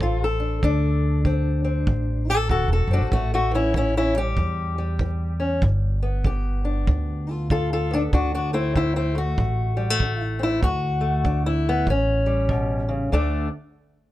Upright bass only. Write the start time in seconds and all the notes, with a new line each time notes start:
Already playing: A1
0.64 D2
1.87 A1
2.50 D1
2.68 E1
2.87 F#1
2.98 A1
3.12 A1
4.37 E2
5.63 G1
6.87 D2
8.13 D2
9.38 A1
10.63 D2
11.87 A1
13.12 D2